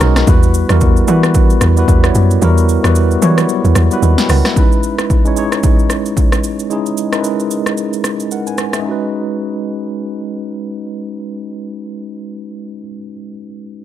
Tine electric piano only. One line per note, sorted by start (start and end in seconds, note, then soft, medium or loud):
0.00 0.30 G#3 medium
0.00 0.29 C#4 medium
0.00 0.30 D#4 medium
0.00 0.29 F#4 medium
0.00 0.29 G#4 loud
0.00 0.29 A#4 loud
0.00 0.29 B4 loud
0.00 0.29 C#5 loud
0.00 0.24 D#5 medium
0.00 0.29 G#5 medium
0.26 0.60 G3 medium
0.26 0.60 B3 medium
0.26 0.61 E4 medium
0.26 0.61 F#4 medium
0.26 0.61 B4 loud
0.69 1.01 G3 medium
0.69 1.01 B3 medium
0.69 1.01 E4 medium
0.69 1.02 F#4 medium
0.69 1.02 A#4 loud
1.07 1.61 G3 medium
1.07 1.61 B3 medium
1.07 1.62 E4 medium
1.07 1.62 F#4 medium
1.07 1.62 B4 medium
1.76 1.97 G3 medium
1.76 1.98 B3 medium
1.76 1.98 E4 medium
1.76 1.98 F#4 medium
1.76 1.99 B4 loud
2.03 2.35 G3 medium
2.03 2.35 B3 medium
2.03 2.35 E4 medium
2.03 2.36 F#4 medium
2.03 2.36 C#5 medium
2.41 2.74 G3 medium
2.41 2.75 B3 medium
2.41 2.75 E4 medium
2.41 2.76 F#4 medium
2.41 2.76 A#4 loud
2.83 3.15 G3 medium
2.83 3.15 B3 medium
2.83 3.16 E4 medium
2.83 3.16 F#4 medium
2.83 3.16 B4 loud
3.21 3.29 F#3 medium
3.21 3.76 B3 medium
3.21 3.76 E4 medium
3.21 3.76 F#4 medium
3.21 3.77 C#5 loud
3.28 3.78 G3 medium
3.91 4.12 G3 medium
3.91 4.12 B3 medium
3.91 4.12 E4 medium
3.91 4.03 F#4 medium
3.91 4.04 B4 loud
4.03 4.18 D#5 medium
4.03 4.18 B5 medium
4.19 4.29 B4 medium
4.19 4.29 G5 medium
4.30 4.45 A#4 medium
4.30 4.45 F#5 medium
4.46 4.71 G4 medium
4.46 4.71 E5 medium
4.55 5.09 G#3 medium
4.55 5.10 C#4 medium
4.55 5.10 D#4 medium
4.55 5.11 E4 medium
4.55 5.11 B4 medium
5.25 5.34 G#3 medium
5.25 5.34 C#4 medium
5.25 5.35 D#4 medium
5.25 5.35 E4 medium
5.25 5.35 C#5 medium
5.36 6.23 G#3 medium
5.36 6.23 C#4 medium
5.36 6.23 D#4 medium
5.36 6.24 E4 medium
5.36 6.24 C#5 medium
6.70 7.03 G#3 medium
6.70 7.04 C#4 medium
6.70 7.04 D#4 medium
6.70 7.04 E4 medium
6.70 7.05 G#4 medium
7.12 7.97 G#3 medium
7.12 7.98 C#4 medium
7.12 7.98 D#4 medium
7.12 7.98 E4 medium
7.12 7.19 A#4 medium
7.21 8.02 B4 medium
8.32 8.47 A#4 medium
8.32 8.46 F#5 medium
8.47 8.73 B4 medium
8.47 8.72 G#5 medium
8.74 9.00 G#4 medium
8.74 8.99 E5 medium
8.79 12.72 G#3 medium
8.79 12.75 C#4 medium
8.85 12.78 D#4 medium
8.85 12.81 F#4 medium
8.91 12.84 B4 medium